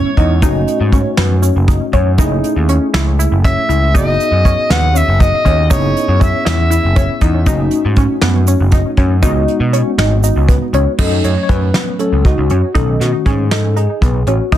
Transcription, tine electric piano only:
0, 0, Header, 1, 2, 480
1, 0, Start_track
1, 0, Tempo, 503356
1, 406, Time_signature, 7, 3, 24, 8
1, 13901, End_track
2, 0, Start_track
2, 0, Title_t, "Tine electric piano"
2, 0, Program_c, 0, 4
2, 0, Note_on_c, 0, 56, 65
2, 0, Note_on_c, 0, 59, 57
2, 0, Note_on_c, 0, 61, 55
2, 0, Note_on_c, 0, 64, 61
2, 364, Note_off_c, 0, 59, 0
2, 366, Note_off_c, 0, 56, 0
2, 369, Note_off_c, 0, 64, 0
2, 370, Note_off_c, 0, 61, 0
2, 400, Note_on_c, 0, 57, 72
2, 401, Note_on_c, 0, 61, 74
2, 406, Note_on_c, 0, 63, 65
2, 413, Note_on_c, 0, 66, 82
2, 2049, Note_off_c, 0, 57, 0
2, 2049, Note_off_c, 0, 61, 0
2, 2052, Note_off_c, 0, 63, 0
2, 2055, Note_off_c, 0, 66, 0
2, 2079, Note_on_c, 0, 57, 75
2, 2079, Note_on_c, 0, 61, 64
2, 2085, Note_on_c, 0, 64, 69
2, 2087, Note_on_c, 0, 68, 83
2, 3728, Note_off_c, 0, 57, 0
2, 3728, Note_off_c, 0, 61, 0
2, 3731, Note_off_c, 0, 64, 0
2, 3732, Note_off_c, 0, 68, 0
2, 3759, Note_on_c, 0, 59, 59
2, 3760, Note_on_c, 0, 63, 55
2, 3762, Note_on_c, 0, 66, 58
2, 3762, Note_on_c, 0, 68, 69
2, 5408, Note_off_c, 0, 59, 0
2, 5408, Note_off_c, 0, 63, 0
2, 5409, Note_off_c, 0, 66, 0
2, 5409, Note_off_c, 0, 68, 0
2, 5438, Note_on_c, 0, 59, 62
2, 5440, Note_on_c, 0, 61, 61
2, 5447, Note_on_c, 0, 64, 54
2, 5447, Note_on_c, 0, 68, 68
2, 7087, Note_off_c, 0, 59, 0
2, 7088, Note_off_c, 0, 61, 0
2, 7092, Note_off_c, 0, 64, 0
2, 7092, Note_off_c, 0, 68, 0
2, 7116, Note_on_c, 0, 61, 72
2, 7117, Note_on_c, 0, 57, 68
2, 7119, Note_on_c, 0, 63, 72
2, 7128, Note_on_c, 0, 66, 80
2, 8767, Note_off_c, 0, 57, 0
2, 8767, Note_off_c, 0, 61, 0
2, 8768, Note_off_c, 0, 63, 0
2, 8773, Note_off_c, 0, 66, 0
2, 8798, Note_on_c, 0, 56, 71
2, 8801, Note_on_c, 0, 59, 70
2, 8801, Note_on_c, 0, 63, 66
2, 8808, Note_on_c, 0, 66, 87
2, 10448, Note_off_c, 0, 56, 0
2, 10450, Note_off_c, 0, 59, 0
2, 10450, Note_off_c, 0, 63, 0
2, 10453, Note_off_c, 0, 66, 0
2, 10480, Note_on_c, 0, 54, 47
2, 10483, Note_on_c, 0, 57, 49
2, 10489, Note_on_c, 0, 69, 84
2, 10491, Note_on_c, 0, 61, 55
2, 10725, Note_on_c, 0, 73, 91
2, 10734, Note_off_c, 0, 69, 0
2, 10891, Note_off_c, 0, 73, 0
2, 10903, Note_on_c, 0, 73, 72
2, 10958, Note_on_c, 0, 71, 77
2, 10967, Note_off_c, 0, 73, 0
2, 11408, Note_off_c, 0, 71, 0
2, 11424, Note_off_c, 0, 54, 0
2, 11427, Note_off_c, 0, 57, 0
2, 11428, Note_off_c, 0, 61, 0
2, 11435, Note_on_c, 0, 54, 37
2, 11436, Note_on_c, 0, 69, 79
2, 11438, Note_on_c, 0, 57, 39
2, 11439, Note_on_c, 0, 61, 44
2, 11656, Note_off_c, 0, 54, 0
2, 11658, Note_off_c, 0, 57, 0
2, 11659, Note_off_c, 0, 61, 0
2, 11680, Note_on_c, 0, 66, 83
2, 11689, Note_off_c, 0, 69, 0
2, 12130, Note_off_c, 0, 66, 0
2, 12154, Note_on_c, 0, 51, 49
2, 12160, Note_on_c, 0, 57, 43
2, 12163, Note_on_c, 0, 69, 83
2, 12168, Note_on_c, 0, 61, 55
2, 12404, Note_on_c, 0, 66, 73
2, 12413, Note_off_c, 0, 69, 0
2, 12629, Note_off_c, 0, 66, 0
2, 12649, Note_on_c, 0, 68, 79
2, 12845, Note_off_c, 0, 51, 0
2, 12848, Note_off_c, 0, 57, 0
2, 12852, Note_off_c, 0, 61, 0
2, 12894, Note_on_c, 0, 69, 79
2, 12896, Note_off_c, 0, 68, 0
2, 13136, Note_on_c, 0, 68, 74
2, 13139, Note_off_c, 0, 69, 0
2, 13622, Note_on_c, 0, 66, 67
2, 13627, Note_off_c, 0, 68, 0
2, 13854, Note_on_c, 0, 52, 51
2, 13857, Note_on_c, 0, 59, 46
2, 13863, Note_off_c, 0, 66, 0
2, 13863, Note_on_c, 0, 63, 57
2, 13901, Note_off_c, 0, 52, 0
2, 13901, Note_off_c, 0, 59, 0
2, 13901, Note_off_c, 0, 63, 0
2, 13901, End_track
0, 0, End_of_file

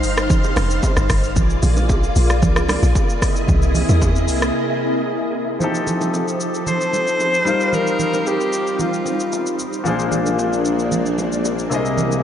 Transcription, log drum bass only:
0, 0, Header, 1, 2, 480
1, 0, Start_track
1, 0, Key_signature, -3, "major"
1, 0, Tempo, 530973
1, 1232, Time_signature, 4, 2, 24, 8
1, 11056, End_track
2, 0, Start_track
2, 0, Title_t, "Log drum bass"
2, 0, Program_c, 0, 39
2, 33, Note_on_c, 0, 31, 109
2, 453, Note_off_c, 0, 31, 0
2, 513, Note_on_c, 0, 29, 97
2, 723, Note_off_c, 0, 29, 0
2, 878, Note_on_c, 0, 31, 102
2, 978, Note_off_c, 0, 31, 0
2, 992, Note_on_c, 0, 31, 94
2, 1233, Note_on_c, 0, 34, 112
2, 1246, Note_off_c, 0, 31, 0
2, 1443, Note_off_c, 0, 34, 0
2, 1474, Note_on_c, 0, 34, 109
2, 1894, Note_off_c, 0, 34, 0
2, 1954, Note_on_c, 0, 34, 96
2, 2194, Note_on_c, 0, 36, 105
2, 2207, Note_off_c, 0, 34, 0
2, 2513, Note_off_c, 0, 36, 0
2, 2557, Note_on_c, 0, 34, 97
2, 2658, Note_off_c, 0, 34, 0
2, 3152, Note_on_c, 0, 36, 107
2, 3472, Note_off_c, 0, 36, 0
2, 3518, Note_on_c, 0, 40, 89
2, 3871, Note_on_c, 0, 36, 93
2, 3885, Note_off_c, 0, 40, 0
2, 4082, Note_off_c, 0, 36, 0
2, 11056, End_track
0, 0, End_of_file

